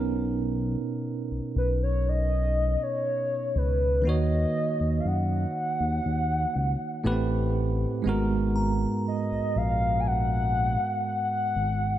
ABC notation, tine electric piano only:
X:1
M:4/4
L:1/8
Q:1/4=60
K:Abdor
V:1 name="Tine electric piano"
[=B,,=B,D^D^A]6- [B,,B,_D^DA] z | [E,B,EGd]6 [=A,,=A,C=C=G_c]2 | [A,,A,CGB]8 |]